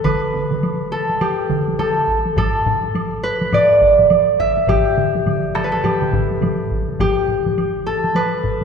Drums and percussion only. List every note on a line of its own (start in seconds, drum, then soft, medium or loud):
0.04 taiko medium
0.04 taiko mid medium
0.04 taiko high medium
0.04 high woodblock medium
0.34 taiko mid medium
0.51 taiko mid medium
0.51 taiko high medium
0.63 taiko high medium
0.63 high woodblock soft
1.09 taiko high soft
1.21 taiko high medium
1.21 high woodblock medium
1.49 taiko medium
1.49 taiko mid medium
1.68 taiko high medium
1.79 taiko high medium
1.79 high woodblock soft
2.08 taiko medium
2.25 taiko high soft
2.36 taiko loud
2.36 taiko low-mid loud
2.36 taiko high medium
2.36 high woodblock medium
2.66 taiko low-mid loud
2.83 taiko high soft
2.95 taiko high medium
2.95 high woodblock soft
3.41 taiko high soft
3.53 taiko low-mid loud
3.53 taiko high medium
3.53 high woodblock medium
3.81 taiko medium
3.99 taiko low-mid medium
3.99 taiko high soft
4.10 taiko high medium
4.10 high woodblock soft
4.39 taiko medium
4.57 taiko high medium
4.68 taiko loud
4.68 taiko low-mid loud
4.68 taiko mid medium
4.68 taiko high medium
4.68 high woodblock medium
4.97 taiko low-mid medium
4.97 taiko mid medium
5.15 taiko low-mid medium
5.15 taiko mid medium
5.15 taiko high medium
5.26 taiko low-mid medium
5.26 taiko mid medium
5.26 taiko high medium
5.26 high woodblock soft
5.55 taiko rim medium
5.55 taiko high medium
5.55 high woodblock soft
5.74 taiko high soft
5.84 taiko low-mid medium
5.84 taiko mid medium
5.84 taiko high medium
5.84 high woodblock medium
6.01 taiko low-mid medium
6.01 taiko mid medium
6.13 taiko medium
6.13 taiko low-mid medium
6.13 taiko mid medium
6.31 taiko high soft
6.41 taiko low-mid medium
6.41 taiko mid medium
6.41 taiko high medium
6.41 high woodblock soft
6.71 taiko medium
6.89 taiko high medium
6.99 taiko medium
6.99 taiko low-mid medium
6.99 taiko high medium
6.99 high woodblock medium
7.28 taiko low-mid medium
7.46 taiko low-mid medium
7.46 taiko high medium
7.58 taiko high medium
7.58 high woodblock soft
8.04 taiko high soft
8.15 taiko high medium
8.15 high woodblock soft
8.44 taiko medium
8.44 taiko low-mid medium